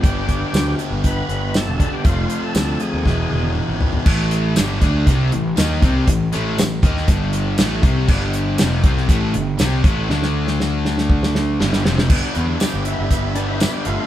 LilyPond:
<<
  \new Staff \with { instrumentName = "Tonewheel organ" } { \time 4/4 \key g \mixolydian \tempo 4 = 119 g'8 g'4 r8 b'4 a'8. g'16 | f'8. a'8. gis'4. r4 | r1 | r1 |
r1 | r1 | r4 g'8 e'4 d'16 e'8 g'16 <a f'>8 | }
  \new Staff \with { instrumentName = "Distorted electric guitar" } { \clef bass \time 4/4 \key g \mixolydian <g, d g b d' g'>4. <g, d g b d' g'>2~ <g, d g b d' g'>8 | <f, c f a c' f'>4. <f, c f a c' f'>8 <e, b, e gis b e'>4. <e, b, e gis b e'>8 | <a, e a>4 <g, d g>8 <d a d'>8 <c g c'>8 <a, e>8 <dis bes dis'>8 <c g c'>8 | <a, e>8 <a, e a>8 <a, e>8 <dis bes dis'>8 <g, d g>4 <a, e a>8 <c g c'>8 |
<g, d g>4 <f, c f>8 <c g c'>8 <a, e a>8 <g, d>8 <c g c'>8 <a, e a>8 | <d a d'>2. <g, d g>8 <f, c f>8 | <g b d' b'>8 <b d' b'>8 <g b d' b'>4 <g b d' b'>8 <b d' b'>8 <g b d' b'>8 <b d' b'>8 | }
  \new Staff \with { instrumentName = "Overdriven electric guitar" } { \clef bass \time 4/4 \key g \mixolydian <g, d g b d'>2.~ <g, d g b d'>8 <g, d g b d'>8 | <f a c' f'>2 <e gis b e'>2 | <a, e a>4 <g, d g>8 <d a d'>8 <c g c'>8 <a, e>8 <dis bes dis'>8 <c g c'>8 | <a, e>8 <a, e a>8 <a, e>8 <dis bes dis'>8 <g, d g>4 <a, e a>8 <c g c'>8 |
<g, d g>4 <f, c f>8 <c g c'>8 <a, e a>8 <g, d>8 <c g c'>8 <a, e a>8 | <d a d'>2. <g, d g>8 <f, c f>8 | <g, d g b d'>2~ <g, d g b d'>8 <g, d g b d'>8 <g, d g b d'>4 | }
  \new Staff \with { instrumentName = "Distorted electric guitar" } { \clef bass \time 4/4 \key g \mixolydian r1 | r1 | <a, e a>4 <g, d g>8 <d a d'>8 <c g c'>8 <a, e>8 <dis bes dis'>8 <c g c'>8 | <a, e>8 <a, e a>8 <a, e>8 <dis bes dis'>8 <g, d g>4 <a, e a>8 <c g c'>8 |
<g, d g>4 <f, c f>8 <c g c'>8 <a, e a>8 <g, d>8 <c g c'>8 <a, e a>8 | <d a d'>2. <g, d g>8 <f, c f>8 | r1 | }
  \new Staff \with { instrumentName = "Picked electric bass" } { \clef bass \time 4/4 \key g \mixolydian g,,4 d,8 r16 g,,8. g,,8. e,,8 r16 | f,,8 r8 d,8 r16 dis,16 e,,8 e,,8. gis,,8. | a,,4 g,,8 d,8 c,8 a,,8 dis,8 c,8 | a,,8 a,,8 a,,8 dis,8 g,,4 a,,8 c,8 |
g,,4 f,,8 c,8 a,,8 g,,8 c,8 a,,8 | d,2. g,,8 f,,8 | g,,16 r16 e,8 r16 g,,8 g,,4.~ g,,16 g,,16 r16 | }
  \new DrumStaff \with { instrumentName = "Drums" } \drummode { \time 4/4 <hh bd>8 <hh bd>8 <hh sn tamb>8 hh8 <hh bd>8 hh8 <hh sn tamb>8 <hh bd>8 | <hh bd>8 hh8 <hh sn tamb>8 hh8 <bd sn>8 tommh16 tommh16 toml8 tomfh16 tomfh16 | <cymc bd>8 hh8 <hh sn tamb>8 <hh bd>8 <hh bd>8 hh8 <hh sn tamb>8 <hh bd>8 | <hh bd>8 hh8 <hh sn tamb>8 <hh bd>16 sn16 <hh bd>8 hh8 <hh sn tamb>8 <hh bd>8 |
<cymc bd>8 hh8 <hh sn tamb>8 <hh bd>16 sn16 <hh bd>8 hh8 <hh sn tamb>8 <hh bd>8 | sn16 sn8 sn16 sn8 sn16 sn16 bd16 sn16 sn8 sn16 sn16 sn16 sn16 | <cymc bd>8 hh8 <hh sn tamb>8 hh8 <hh bd>8 hh8 <hh sn tamb>8 hh8 | }
>>